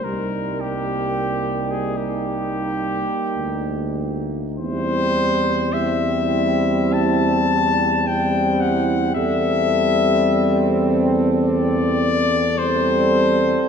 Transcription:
<<
  \new Staff \with { instrumentName = "Cornet" } { \time 4/4 \key c \minor \tempo 4 = 53 bes'8 g'4 aes'16 g'2 r16 | \key c \lydian c''4 e''4 a''4 g''8 fis''8 | e''4.~ e''16 r16 d''4 c''4 | }
  \new Staff \with { instrumentName = "French horn section" } { \time 4/4 \key c \minor ees'1 | \key c \lydian e'4 e'2 e'4 | a'2. a'4 | }
  \new Staff \with { instrumentName = "Trombone section" } { \time 4/4 \key c \minor bes1 | \key c \lydian c'4 c'2 c'4 | c'2. c'4 | }
  \new Staff \with { instrumentName = "Euphonium" } { \clef bass \time 4/4 \key c \minor g2.~ g8. r16 | \key c \lydian g4 g2 g4 | g2~ g8. r16 g4 | }
  \new Staff \with { instrumentName = "Tuba" } { \clef bass \time 4/4 \key c \minor c,2~ c,8. r16 d,4 | \key c \lydian e,1 | e,1 | }
>>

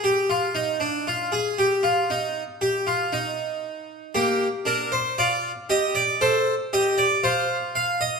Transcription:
\new Staff \with { instrumentName = "Harpsichord" } { \time 4/4 \key g \phrygian \tempo 4 = 58 << { g'16 f'16 ees'16 d'16 f'16 aes'16 g'16 f'16 ees'8 g'16 f'16 ees'4 | g'8 bes'16 c''16 d''8 ees''16 d''16 c''8 ees''16 d''16 c''8 f''16 ees''16 | } \\ { r1 | bes8 d'8 f'8 g'8 a'8 g'8 f'4 | } >> }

